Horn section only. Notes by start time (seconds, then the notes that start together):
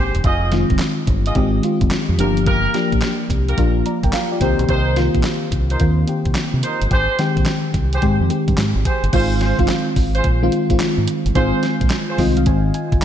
Already playing: G4 G#4 C5
0.24 F4 G#4 D#5
1.26 F4 G#4 D#5
2.19 F4 G4 A#4
2.46 F4 G4 A#4
3.48 F4 G4 A#4
4.41 D#4 A#4 C5
4.68 D#4 A#4 C5
5.70 D#4 A#4 C5
6.63 D#4 A#4 C5
6.91 G4 G#4 C5
7.93 G4 G#4 C5
8.85 G4 G#4 C5
9.13 F4 G#4 C5
9.41 F4 G#4 C5
10.15 F4 G#4 C5
11.35 F4 G#4 C5
12.09 F4 G#4 C5